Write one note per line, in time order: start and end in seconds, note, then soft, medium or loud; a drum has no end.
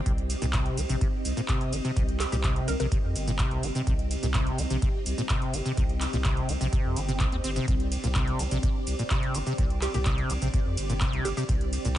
0.00 11.98 C4 medium
0.00 11.98 G4 medium
0.06 0.35 C2 loud
0.06 0.13 C3 medium
0.06 7.66 D#5 medium
0.06 kick loud
0.06 closed hi-hat medium
0.06 cabasa soft
0.18 closed hi-hat soft
0.30 open hi-hat loud
0.30 ride medium
0.30 cabasa medium
0.42 0.71 C2 loud
0.42 0.46 A#2 loud
0.42 closed hi-hat medium
0.42 cabasa soft
0.53 0.79 C3 loud
0.53 kick loud
0.53 clap loud
0.53 closed hi-hat medium
0.53 cabasa soft
0.66 closed hi-hat soft
0.77 0.85 C2 medium
0.77 0.81 F3 medium
0.77 open hi-hat loud
0.77 ride medium
0.77 cabasa medium
0.89 0.97 A#1 loud
0.89 0.96 C3 loud
0.89 closed hi-hat medium
0.89 cabasa soft
1.01 1.08 C3 medium
1.01 kick loud
1.01 closed hi-hat medium
1.01 cabasa soft
1.25 1.33 C2 loud
1.25 open hi-hat loud
1.25 ride medium
1.25 cabasa medium
1.37 1.41 A#2 loud
1.37 closed hi-hat soft
1.37 cabasa soft
1.48 1.74 C3 loud
1.48 kick loud
1.48 clap loud
1.48 closed hi-hat medium
1.48 cabasa soft
1.61 closed hi-hat soft
1.73 1.80 G1 loud
1.73 1.77 F3 medium
1.73 open hi-hat loud
1.73 ride medium
1.73 cabasa medium
1.85 1.91 C3 loud
1.85 closed hi-hat soft
1.85 cabasa soft
1.97 2.25 C2 loud
1.97 2.03 C3 medium
1.97 kick loud
1.97 closed hi-hat medium
1.97 cabasa soft
2.09 closed hi-hat soft
2.20 2.28 G4 medium
2.20 clap medium
2.20 open hi-hat loud
2.20 ride medium
2.20 cabasa medium
2.32 2.61 C2 loud
2.32 2.36 A#2 loud
2.32 2.40 G4 medium
2.32 closed hi-hat medium
2.32 cabasa soft
2.44 2.69 C3 loud
2.44 kick loud
2.44 clap loud
2.44 closed hi-hat medium
2.44 cabasa soft
2.56 closed hi-hat soft
2.68 2.76 C2 medium
2.68 2.72 F3 medium
2.68 2.76 A#4 medium
2.68 open hi-hat loud
2.68 ride medium
2.68 cabasa medium
2.80 2.87 A#1 loud
2.80 2.86 C3 loud
2.80 2.87 A#4 medium
2.80 closed hi-hat medium
2.80 cabasa soft
2.92 2.98 C3 medium
2.92 kick loud
2.92 closed hi-hat medium
2.92 cabasa soft
3.04 3.15 F2 loud
3.16 3.44 G1 loud
3.16 open hi-hat loud
3.16 ride medium
3.16 cabasa medium
3.27 3.31 A#2 loud
3.27 closed hi-hat soft
3.27 cabasa soft
3.39 3.65 C3 loud
3.39 kick loud
3.39 clap loud
3.39 closed hi-hat medium
3.39 cabasa soft
3.51 3.59 C2 medium
3.51 closed hi-hat soft
3.63 3.71 G1 loud
3.63 3.67 F3 medium
3.63 open hi-hat loud
3.63 ride medium
3.63 cabasa medium
3.75 3.82 C3 loud
3.75 closed hi-hat soft
3.75 cabasa soft
3.87 4.16 C2 loud
3.87 3.94 C3 medium
3.87 kick loud
3.87 closed hi-hat medium
3.87 cabasa soft
3.99 closed hi-hat soft
4.11 open hi-hat loud
4.11 ride medium
4.11 cabasa medium
4.23 4.51 C2 loud
4.23 4.27 A#2 loud
4.23 closed hi-hat medium
4.23 cabasa soft
4.34 4.60 C3 loud
4.34 kick loud
4.34 clap loud
4.34 closed hi-hat medium
4.34 cabasa soft
4.47 closed hi-hat soft
4.58 4.66 C2 medium
4.58 4.62 F3 medium
4.58 open hi-hat loud
4.58 ride medium
4.58 cabasa medium
4.70 4.78 A#1 loud
4.70 4.77 C3 loud
4.70 closed hi-hat medium
4.70 cabasa soft
4.82 4.89 C3 medium
4.82 kick loud
4.82 closed hi-hat medium
4.82 cabasa soft
5.06 5.14 C2 loud
5.06 open hi-hat loud
5.06 ride medium
5.06 cabasa medium
5.18 5.22 A#2 loud
5.18 closed hi-hat soft
5.18 cabasa soft
5.29 5.55 C3 loud
5.29 kick loud
5.29 clap loud
5.29 closed hi-hat medium
5.29 cabasa soft
5.42 closed hi-hat soft
5.54 5.61 G1 medium
5.54 5.58 F3 medium
5.54 open hi-hat loud
5.54 ride medium
5.54 cabasa medium
5.66 5.72 C3 loud
5.66 closed hi-hat soft
5.66 cabasa soft
5.77 6.06 C2 loud
5.77 5.84 C3 medium
5.77 kick loud
5.77 closed hi-hat medium
5.77 cabasa soft
5.89 closed hi-hat soft
6.01 clap medium
6.01 open hi-hat loud
6.01 ride medium
6.01 cabasa medium
6.13 6.42 C2 loud
6.13 6.17 A#2 loud
6.13 closed hi-hat soft
6.13 cabasa soft
6.25 6.50 C3 loud
6.25 kick loud
6.25 clap loud
6.25 closed hi-hat medium
6.25 cabasa soft
6.37 closed hi-hat soft
6.49 6.57 C2 medium
6.49 6.53 F3 medium
6.49 open hi-hat loud
6.49 ride medium
6.49 cabasa medium
6.61 6.68 A#1 loud
6.61 6.67 C3 loud
6.61 closed hi-hat medium
6.61 cabasa soft
6.73 6.98 C3 medium
6.73 kick loud
6.73 closed hi-hat medium
6.73 cabasa soft
6.85 6.96 F2 loud
6.96 7.20 G1 loud
6.96 7.00 D#3 medium
6.96 open hi-hat loud
6.96 ride medium
6.96 cabasa medium
7.08 7.12 C3 loud
7.08 closed hi-hat soft
7.08 cabasa soft
7.20 7.28 C2 loud
7.20 7.27 C3 loud
7.20 kick loud
7.20 clap loud
7.20 closed hi-hat medium
7.20 cabasa soft
7.32 7.40 D#2 medium
7.32 7.36 C4 medium
7.32 closed hi-hat soft
7.44 7.59 G1 medium
7.44 7.51 C4 medium
7.44 open hi-hat loud
7.44 ride medium
7.44 cabasa medium
7.56 7.66 C3 loud
7.56 closed hi-hat soft
7.56 cabasa soft
7.68 7.97 C2 loud
7.68 11.98 D5 medium
7.68 kick loud
7.68 closed hi-hat medium
7.68 cabasa soft
7.80 closed hi-hat soft
7.92 open hi-hat loud
7.92 ride medium
7.92 cabasa medium
8.04 8.33 C2 loud
8.04 8.08 A#2 loud
8.04 closed hi-hat soft
8.04 cabasa soft
8.15 8.41 C3 loud
8.15 kick loud
8.15 clap loud
8.15 closed hi-hat medium
8.15 cabasa soft
8.28 closed hi-hat soft
8.39 8.47 C2 medium
8.39 8.43 F3 medium
8.39 open hi-hat loud
8.39 ride medium
8.39 cabasa medium
8.51 8.59 A#1 loud
8.51 8.58 C3 loud
8.51 closed hi-hat medium
8.51 cabasa soft
8.63 8.70 C3 medium
8.63 kick loud
8.63 closed hi-hat medium
8.63 cabasa soft
8.87 8.95 C2 loud
8.87 open hi-hat loud
8.87 ride medium
8.87 cabasa medium
8.99 9.03 A#2 loud
8.99 closed hi-hat soft
8.99 cabasa soft
9.10 9.36 C3 loud
9.10 kick loud
9.10 clap loud
9.10 closed hi-hat medium
9.10 cabasa soft
9.23 closed hi-hat soft
9.35 9.42 G1 medium
9.35 9.39 F3 medium
9.35 open hi-hat loud
9.35 ride medium
9.35 cabasa medium
9.47 9.53 C3 loud
9.47 closed hi-hat soft
9.47 cabasa soft
9.58 9.87 C2 loud
9.58 9.65 C3 medium
9.58 kick loud
9.58 closed hi-hat medium
9.58 cabasa soft
9.70 closed hi-hat soft
9.82 9.90 G4 medium
9.82 clap medium
9.82 open hi-hat loud
9.82 ride medium
9.82 cabasa medium
9.94 10.23 C2 loud
9.94 9.98 A#2 loud
9.94 10.02 G4 medium
9.94 closed hi-hat soft
9.94 cabasa soft
10.05 10.31 C3 loud
10.05 kick loud
10.05 clap loud
10.05 closed hi-hat medium
10.05 cabasa soft
10.18 closed hi-hat soft
10.30 10.37 C2 medium
10.30 10.34 F3 medium
10.30 open hi-hat loud
10.30 ride medium
10.30 cabasa medium
10.42 10.49 A#1 loud
10.42 10.48 C3 loud
10.42 closed hi-hat medium
10.42 cabasa soft
10.54 10.60 C3 medium
10.54 kick loud
10.54 closed hi-hat medium
10.54 cabasa soft
10.66 10.77 F2 loud
10.77 11.06 G1 loud
10.77 open hi-hat loud
10.77 ride medium
10.77 cabasa medium
10.89 10.93 A#2 loud
10.89 closed hi-hat soft
10.89 cabasa soft
11.01 11.27 C3 loud
11.01 kick loud
11.01 clap loud
11.01 closed hi-hat medium
11.01 cabasa soft
11.13 11.21 C2 medium
11.13 closed hi-hat soft
11.25 11.33 G1 loud
11.25 11.29 F3 medium
11.25 11.33 G4 medium
11.25 open hi-hat loud
11.25 ride medium
11.25 cabasa medium
11.37 11.44 C3 loud
11.37 11.45 G4 medium
11.37 closed hi-hat soft
11.37 cabasa soft
11.49 11.78 C2 loud
11.49 11.55 C3 medium
11.49 kick loud
11.49 closed hi-hat medium
11.49 cabasa soft
11.61 closed hi-hat soft
11.73 open hi-hat loud
11.73 ride medium
11.73 cabasa medium
11.85 11.98 C2 loud
11.85 11.89 A#2 loud
11.85 closed hi-hat medium
11.85 cabasa soft